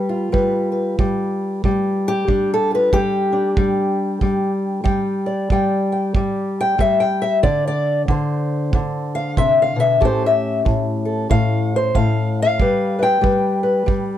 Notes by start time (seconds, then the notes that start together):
Already playing: G3 B4
0.09 F4
0.32 G3 B4, kick
0.72 B4
0.99 G3, kick
1.64 G3, kick
2.08 G4
2.28 G3 D4, kick
2.54 A4
2.71 F4 B4
2.93 G3 G4, kick
3.32 D4
3.57 G3, kick
4.21 G3, kick
4.84 G3 G5, kick
5.26 D5
5.50 G3 G5, kick
5.92 G5
6.15 G3, kick
6.61 G5
6.78 G3 E5, kick
7.00 G5
7.22 E5
7.43 D3 D5, kick
7.67 D5
8.08 D3 C5, kick
8.73 D3, kick
9.15 F5
9.37 C3 E5, kick
9.62 F5
9.76 B2 E5
10.00 A2 C#4 G4 A4, kick
10.05 C5
10.26 E5
10.65 A2, kick
11.05 A4
11.30 A2 F5, kick
11.76 C5
11.95 A2 F5, kick
12.42 F5
12.60 G3 B4, kick
12.99 B4 G5
13.21 G3 B4, kick
13.63 B4
13.86 G3, kick